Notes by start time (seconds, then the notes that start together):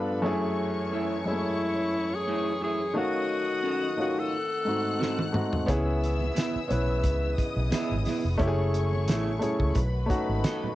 Already playing: G2 F3 A3 B3 D4 F4 G4 A4 B4 B5
0.22 F#2 A3 C#4 E4 G#4 C#5 C#6
0.26 E3 C#4 G#4
0.92 A3 E4 G#4
1.24 F#2 G#3 C#4 E4 G#4
1.31 A3
2.15 G#4
2.27 A3 E4 G#4
2.61 A3 E4 G#4
2.94 D#3 F#3 A3 C#4 F#4 D#5 F5 D#6
3.63 C#4 F#4 A4
3.96 D#3 A3 C#4 F4 F#4
4.01 F#4
4.19 A4
4.32 D#3 A3 C4 F#5 F#6
4.65 G#2 A3 C4 D#4 F#4
4.99 C4 F#4 A4, snare
5.19 high tom
5.33 G#2 A3 C4 D#4 F#4, mid tom
5.53 floor tom
5.66 C#2 C#3 E3 B3 C#4 E4 G#4 E5 E6, kick, closed hi-hat, muted conga
6.04 closed hi-hat
6.20 high conga
6.35 B3 E4 G#4, snare, closed hi-hat, tambourine, muted conga, high conga
6.56 muted fingered electric bass stroke
6.68 B1 B3 C#4 E4 B4, closed hi-hat, low conga
7.04 C#2, kick, closed hi-hat
7.23 muted conga
7.38 D#5 D#6, kick, closed hi-hat
7.57 B1
7.71 B3 E4 G#4, muted fingered electric bass stroke, snare, closed hi-hat, tambourine, muted conga, high conga
7.91 G#1, muted conga, low conga
8.05 B3 E4 G#4, snare, open hi-hat, low conga
8.25 F1
8.38 F#1 C#3 F#3 A3 C#4 E4 G4 C#5 C#6, kick, closed hi-hat
8.48 G#4
8.74 closed hi-hat
8.92 high conga
9.07 A1 A3 E4 G#4, snare, closed hi-hat, tambourine, muted conga, high conga
9.27 muted conga
9.39 A3 C#4 E4 G#4, closed hi-hat
9.44 low conga
9.60 C#2, kick
9.75 B1 D#3 F#3 B3 F#4 B4 B5, kick, closed hi-hat, muted conga
10.06 A3 C#4 D#4 F#4
10.10 kick, closed hi-hat
10.29 G#1
10.44 F#4 A4 D#5, snare, closed hi-hat, tambourine, muted conga, high conga
10.64 low conga